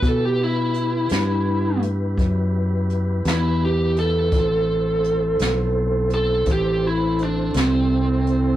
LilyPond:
<<
  \new Staff \with { instrumentName = "Lead electric guitar" } { \time 12/8 \key e \minor \tempo 4. = 56 a'16 g'16 e'2 r2 e'8 g'8 a'8~ | a'2~ a'8 a'8 g'8 e'8 d'8 c'4. | }
  \new Staff \with { instrumentName = "Tonewheel organ" } { \time 12/8 \key e \minor <b e' g' b'>1. | <c' e' a' c''>1. | }
  \new Staff \with { instrumentName = "Fingered electric bass" } { \clef bass \time 12/8 \key e \minor b,4. g,4. fis,4. e,4. | a,,4. b,,4. a,,4. c,4. | }
  \new DrumStaff \with { instrumentName = "Drums" } \drummode { \time 12/8 <hh bd>4 hh8 <hh sn>4 hh8 <hh bd>4 hh8 <hh sn>4 hh8 | <hh bd>4 hh8 <hh sn>4 hh8 <hh bd sn>4 hh8 <hh sn>4 hh8 | }
>>